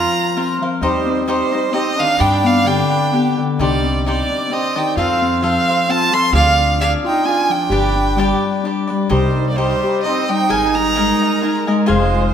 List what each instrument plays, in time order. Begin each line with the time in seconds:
Already playing: harp F3 C4 F4, cavaquinho F4 A#4 C5 F5, trumpet F4, violin A#5
0.36 harp C4, cavaquinho F4 A#4 C5 F5
0.61 harp F3, cavaquinho A#4 C5 F5
0.81 upright bass D#2, trumpet G3, harp D#4, cavaquinho D#4 G4 C5 D#5, violin C5
1.05 harp C4
1.26 trumpet G3, cavaquinho D#4 G4 C5 D#5, violin C5
1.51 harp D#4, cavaquinho G4 C5 D#5
1.72 trumpet C4, harp C4, cavaquinho D#4 G4 C5 D#5, violin D#5
1.97 harp D#3, trumpet D4, cavaquinho G4 C5 D#5, violin F5
2.18 upright bass G2, trumpet D4, cavaquinho D4 G4 B4 D5, harp D4, violin G5
2.44 harp B3, trumpet D4, violin F5
2.64 harp D3, cavaquinho D4 G4 B4 D5, trumpet D4, violin G5
2.90 cavaquinho G4 B4 D5
3.13 harp B3, cavaquinho D4 G4 B4 D5
3.38 harp D3
3.59 upright bass C2, trumpet G3, harp D4, cavaquinho D#4 G4 C5 D5, violin D5
3.83 harp C4
4.06 trumpet G3, cavaquinho D#4 G4 C5 D5, violin D5
4.29 harp D4
4.50 harp C4, trumpet C4, cavaquinho D#4 G4 C5 D5
4.54 violin D#5
4.75 harp D#3, trumpet D#4, cavaquinho G4 C5 D5, violin G5
4.96 upright bass F2, trumpet C4, harp F4, cavaquinho F4 A4 C5 F5, violin F5
5.21 harp C4
5.42 harp F3, trumpet C4, cavaquinho F4 A4 C5 F5, violin F5
5.68 cavaquinho A4 C5 F5
5.88 harp C4, cavaquinho F4 A4 C5 F5, trumpet F4, violin A5
6.13 harp F3, trumpet A4, cavaquinho A4 C5 F5, violin C6
6.32 upright bass D2, trumpet D4, cavaquinho D4 G#4 D5 F5, harp F4, violin F5
6.59 harp D4
6.80 trumpet D4, cavaquinho D4 G#4 D5 F5, violin F5
7.04 trumpet D#4, harp F4, violin G5
7.25 harp D4, cavaquinho D4 G#4 D5 F5, trumpet F4, violin G#5
7.49 harp F3, trumpet D4, violin G5
7.69 upright bass G1, cavaquinho D4 G4 B4 D5, harp G4
7.95 harp D4
8.16 harp G3, cavaquinho D4 G4 B4 D5
8.63 harp D4, cavaquinho D4 G4 B4 D5
8.87 harp G3, cavaquinho G4 B4 D5
9.09 upright bass C2, violin section G3 D#4 C5, trumpet G3, cavaquinho D#4 G4 C5 D#5, harp G4, violin C5
9.36 harp D#4
9.50 trumpet A#3, violin D5
9.56 trumpet G3, cavaquinho D#4 G4 C5 D#5, violin C5
9.83 harp G4
10.03 harp D#4, cavaquinho D#4 G4 C5 D#5, violin D#5
10.07 trumpet C4
10.29 harp G3, trumpet D#4, violin G5
10.49 upright bass G#1, violin section G#3, trumpet D#4, cavaquinho G#4 A#4 D#5 G#5, harp G#4, violin G#5
10.54 violin section A#4
10.75 harp D#4, trumpet D#4, violin A#5
10.95 harp G#3, cavaquinho G#4 A#4 D#5 G#5
11.22 cavaquinho A#4 D#5 G#5
11.41 harp D#4, cavaquinho G#4 A#4 D#5 G#5
11.67 harp G#3, cavaquinho A#4 D#5 G#5
11.86 upright bass F1, cavaquinho F4 C5 F5 G#5, harp G#4, violin C5
11.90 trumpet G#3, violin section F4 C5
12.14 harp F4